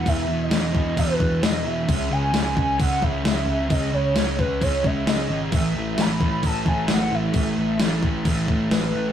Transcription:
<<
  \new Staff \with { instrumentName = "Soft synth lead" } { \time 4/4 \key cis \minor \tempo 4 = 132 e''8. dis''4 dis''16 b'4 dis''8 e''8~ | e''8 gis''4 gis''8 fis''8 e''4. | dis''8 cis''4 b'8 cis''8 e''8 dis''8. r16 | e''4 b''4 a''8 gis''8 fis''8 e''8~ |
e''4 r2 b'4 | }
  \new Staff \with { instrumentName = "Distorted electric guitar" } { \clef bass \time 4/4 \key cis \minor <e, b, e>8 <b, e>8 <e, b, e>8 <b, e>8 <e, b, e>8 <b, e>8 <e, b, e>8 <b, e>8 | <cis gis cis'>8 <gis cis'>8 <cis gis cis'>8 <gis cis'>8 <cis gis cis'>8 <gis cis'>8 <cis gis cis'>8 <gis cis'>8 | <cis gis cis'>8 <gis cis'>8 <cis gis cis'>8 <gis cis'>8 <cis gis cis'>8 <gis cis'>8 <cis gis cis'>8 <gis cis'>8 | <a, e a>8 <e a>8 <a, e a>8 <e a>8 <a, e a>8 <e a>8 <a, e a>8 <e a>8 |
<a, e a>8 <e a>8 <a, e a>8 <e a>8 <a, e a>8 <e a>8 <a, e a>8 <e a>8 | }
  \new Staff \with { instrumentName = "Picked electric bass" } { \clef bass \time 4/4 \key cis \minor e,,8 e,,8 e,,4 e,,8 e,,8 e,,8 e,,8 | cis,8 cis,8 cis,8 cis,8 cis,8 cis,8 cis,8 cis,8 | cis,8 cis,8 cis,4 cis,8 cis,8 cis,8 gis,,8 | a,,8 a,,8 a,,8 a,,8 a,,8 a,,8 a,,8 a,,8 |
a,,8 a,,8 a,,4 a,,8 a,,8 a,,8 a,,8 | }
  \new DrumStaff \with { instrumentName = "Drums" } \drummode { \time 4/4 <cymc bd>4 <cymc sn>8 bd8 <cymc bd>8 bd8 <cymc sn>4 | <cymc bd>4 <cymc sn>8 bd8 <cymc bd>8 bd8 <cymc sn>4 | <cymc bd>4 <cymc sn>8 bd8 <cymc bd>8 bd8 <cymc sn>4 | <cymc bd>4 <cymc sn>8 bd8 <cymc bd>8 bd8 <cymc sn>4 |
<cymc bd>4 <cymc sn>8 bd8 <cymc bd>8 bd8 <cymc sn>4 | }
>>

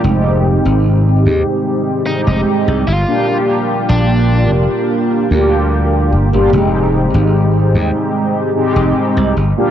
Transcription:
<<
  \new Staff \with { instrumentName = "Lead electric guitar" } { \time 4/4 \key f \dorian \tempo 4 = 74 r2 r8 ees'16 ees'16 r8 f'8 | r8. d'8. r2 r8 | r1 | }
  \new Staff \with { instrumentName = "Analog polysynth" } { \time 4/4 \key f \dorian <aes c' ees' g'>2~ <aes c' ees' g'>8 <aes c' ees' g'>4 r16 <bes d' f' g'>16 | <bes d' f' g'>2~ <bes d' f' g'>8 <bes d' f' g'>4~ <bes d' f' g'>16 <bes d' f' g'>16 | <aes c' ees'>2~ <aes c' ees'>8 <aes c' ees' g'>4 r16 <bes d' f' g'>16 | }
  \new Staff \with { instrumentName = "Slap bass" } { \clef bass \time 4/4 \key f \dorian f,,8. aes,,8. ees,16 r4 f,,16 r16 c,16 g,,16 r16 | r8. bes,,8. f,,16 r8. d,4 g,,16 g,,16 | f,,8. aes,,8. ees,16 r4 f,,16 r16 c,16 g,,16 r16 | }
>>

